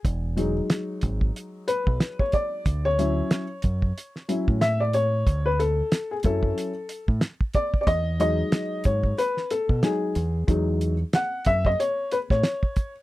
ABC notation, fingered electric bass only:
X:1
M:4/4
L:1/16
Q:"Swing 16ths" 1/4=92
K:E
V:1 name="Fingered electric bass" clef=bass
E,,,4 z2 G,,,2 z3 B,,, z4 | =D,,4 z2 F,,2 z3 A,,4- A,, | =D,,4 z2 F,,2 z3 A,, z4 | E,,4 z2 G,,2 z3 B,, z2 E,,2 |
E,,4 z2 F,,2 z3 A,, z4 |]